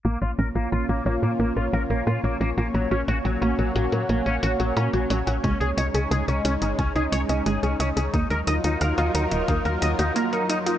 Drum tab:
HH |xxxxxxxxxxxxxxxx|xxxxxxxxxxxxxxxx|xxxxxxxxxxxxxxxx|xxxxxxxxxxxxxxxx|
BD |----------------|----------------|o-------o-------|o-------o-------|